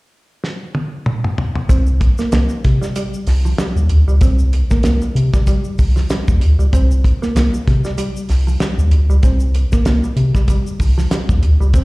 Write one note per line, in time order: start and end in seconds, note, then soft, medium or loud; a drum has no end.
0.44 snare medium
0.75 high tom medium
1.06 mid tom loud
1.24 mid tom medium
1.38 floor tom loud
1.56 floor tom medium
1.69 2.11 C2 loud
1.69 1.81 C4 medium
1.69 kick loud
1.69 closed hi-hat medium
1.69 shaker medium
1.87 shaker medium
2.00 muted clean electric guitar stroke soft
2.00 kick loud
2.00 closed hi-hat medium
2.18 2.28 A#3 medium
2.18 snare soft
2.18 shaker medium
2.32 2.48 C2 loud
2.32 2.44 A#3 medium
2.32 snare loud
2.32 closed hi-hat medium
2.32 shaker medium
2.49 muted clean electric guitar stroke soft
2.49 shaker medium
2.64 2.79 C3 medium
2.64 kick medium
2.64 snare soft
2.64 closed hi-hat medium
2.82 2.91 G3 medium
2.82 snare soft
2.82 shaker medium
2.96 3.08 G3 medium
2.96 closed hi-hat loud
2.96 shaker medium
3.14 shaker medium
3.27 3.53 C2 medium
3.27 muted clean electric guitar stroke medium
3.27 snare soft
3.27 open hi-hat medium
3.27 shaker soft
3.45 3.54 F3 medium
3.45 shaker soft
3.58 3.71 G3 medium
3.58 snare loud
3.58 closed hi-hat medium
3.58 shaker medium
3.76 3.88 D#2 loud
3.76 shaker medium
3.89 4.05 D2 medium
3.89 muted clean electric guitar stroke soft
3.89 closed hi-hat medium
4.07 4.19 C#2 medium
4.07 4.17 G3 medium
4.07 shaker soft
4.21 4.63 C2 loud
4.21 4.34 C4 medium
4.21 kick loud
4.21 closed hi-hat medium
4.21 shaker medium
4.39 shaker medium
4.53 muted clean electric guitar stroke soft
4.53 closed hi-hat medium
4.71 4.80 A#3 medium
4.71 kick medium
4.71 snare soft
4.71 shaker medium
4.83 5.00 C2 loud
4.83 4.97 A#3 medium
4.83 snare loud
4.83 closed hi-hat medium
4.83 shaker medium
5.02 muted clean electric guitar stroke soft
5.02 shaker medium
5.15 5.30 C3 loud
5.15 closed hi-hat medium
5.34 5.43 G3 medium
5.34 kick loud
5.34 snare soft
5.34 shaker medium
5.47 5.59 G3 medium
5.47 kick medium
5.47 closed hi-hat medium
5.47 shaker medium
5.64 shaker medium
5.78 6.05 C2 loud
5.78 muted clean electric guitar stroke medium
5.78 kick medium
5.78 open hi-hat medium
5.78 shaker soft
5.96 6.05 F3 medium
5.96 snare soft
5.96 shaker soft
6.10 6.22 G3 medium
6.10 snare loud
6.10 closed hi-hat loud
6.10 shaker medium
6.28 6.39 D#2 loud
6.28 kick loud
6.28 shaker medium
6.40 6.56 D2 medium
6.40 muted clean electric guitar stroke soft
6.40 closed hi-hat medium
6.59 6.70 C#2 medium
6.59 6.68 G3 medium
6.59 shaker soft
6.73 7.14 C2 loud
6.73 6.85 C4 medium
6.73 kick loud
6.73 closed hi-hat medium
6.73 shaker medium
6.91 shaker medium
7.04 muted clean electric guitar stroke soft
7.04 kick medium
7.04 closed hi-hat medium
7.22 7.31 A#3 medium
7.22 snare soft
7.22 shaker medium
7.35 7.50 C2 medium
7.35 7.48 A#3 medium
7.35 snare loud
7.35 closed hi-hat medium
7.35 shaker medium
7.54 muted clean electric guitar stroke soft
7.54 shaker medium
7.68 7.82 C3 medium
7.68 kick loud
7.68 snare soft
7.68 closed hi-hat medium
7.84 7.94 G3 medium
7.84 snare soft
7.84 shaker medium
7.98 8.10 G3 medium
7.98 closed hi-hat loud
7.98 shaker medium
8.16 shaker medium
8.29 8.56 C2 medium
8.29 muted clean electric guitar stroke soft
8.29 snare soft
8.29 open hi-hat medium
8.29 shaker soft
8.47 8.57 F3 medium
8.47 shaker soft
8.60 8.73 G3 medium
8.60 snare loud
8.60 closed hi-hat medium
8.60 shaker medium
8.78 8.90 D#2 medium
8.78 shaker medium
8.91 9.06 D2 loud
8.91 muted clean electric guitar stroke soft
8.91 closed hi-hat medium
9.09 9.21 C#2 medium
9.09 9.19 G3 medium
9.09 shaker soft
9.23 9.65 C2 loud
9.23 9.36 C4 medium
9.23 kick loud
9.23 closed hi-hat medium
9.23 shaker medium
9.40 shaker medium
9.54 muted clean electric guitar stroke soft
9.54 closed hi-hat medium
9.72 9.82 A#3 medium
9.72 kick medium
9.72 snare soft
9.72 shaker medium
9.85 10.01 C2 loud
9.85 9.98 A#3 medium
9.85 snare loud
9.85 closed hi-hat medium
9.85 shaker medium
10.04 muted clean electric guitar stroke medium
10.04 shaker medium
10.16 10.32 C3 loud
10.16 closed hi-hat medium
10.35 10.45 G3 medium
10.35 kick medium
10.35 snare soft
10.35 shaker medium
10.48 10.62 G3 medium
10.48 kick medium
10.48 closed hi-hat medium
10.48 shaker medium
10.67 shaker medium
10.79 11.06 C2 medium
10.79 muted clean electric guitar stroke medium
10.79 kick medium
10.79 open hi-hat medium
10.79 shaker soft
10.98 11.07 F3 medium
10.98 snare soft
10.98 shaker medium
11.11 11.24 G3 medium
11.11 snare loud
11.11 closed hi-hat loud
11.11 shaker medium
11.29 11.41 D#2 loud
11.29 kick loud
11.29 shaker medium
11.43 11.58 D2 medium
11.43 muted clean electric guitar stroke soft
11.43 closed hi-hat medium
11.60 11.72 C#2 medium
11.60 11.70 G3 medium
11.60 shaker soft
11.73 11.84 C2 loud
11.73 11.84 C4 medium
11.73 kick loud
11.73 closed hi-hat medium
11.73 shaker medium